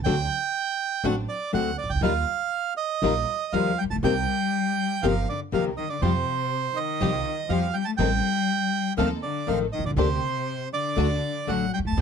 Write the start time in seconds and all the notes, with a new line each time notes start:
0.04 D2 D3 F#3 A3 C4 D4 F#4 G5
1.04 A1 D3 F#3 A3 C4 D4 F#4 F#5
1.29 D5
1.53 D2 D3 F#3 A3 C4 D4 F#4 F#5
1.78 D5
1.84 C2
1.90 C#2 G5
1.96 D2
2.01 D#2 D#3 G3 D#4 F4 F5
2.77 D#5
3.02 A#1 D#3 G3 D#4 F4
3.53 D#2 D#3 F3 G3 D#4 F4 F5
3.78 G3 G5
3.84 A1
3.90 A#1 A3 A5
3.96 B1
4.03 C2 C3 D#3 G3 A#3 C4 D#4 G4 A#4 G5
5.03 G1 C3 D#3 F3 A#3 C4 D#4 G4 A#4 F5
5.29 D3 D5
5.52 C2 C3 D#3 F3 A#3 C4 D#4 G4 A#4 F5
5.77 D#3 D#5
5.90 D3 D5
6.02 F2 C3 F3 G3 C4 F4 G4 C5
6.76 D#3 D#5
7.00 C2 F3 G3 C4 F4 G4
7.48 F2 F3 G3 C4 F4 G4 F5
7.74 G3 G5
7.85 A3 A5
7.97 A1 D#3 G3 A3 C4 D#4 A4 G5
8.97 D#2 D#3 F3 A3 C4 D#4 A4 F5
9.23 D3 D5
9.47 A1 D#3 F3 A3 C4 D#4 A4 F5
9.73 D#3 D#5
9.79 B1
9.85 C2 D3 D5
9.91 C#2
9.96 D2 C3 D3 A#3 D4 G4 C5
10.73 D3 D5
10.96 D2 D3 A3 D4 F#4
11.47 A1 D3 F#3 A3 D4 F#4 F#5
11.74 G3 G5
11.79 D2
11.85 D#2 A3 A5
11.92 E2
11.97 F2 F3 G3 C4 F4